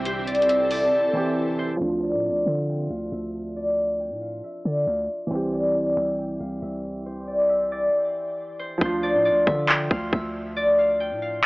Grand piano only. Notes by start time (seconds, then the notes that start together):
Already playing: E3 C4 G4
1.13 E3 C4 G4
1.77 F3 D4
1.85 F4
5.27 E3 C4
5.35 G4
8.78 F3 D4
8.85 F4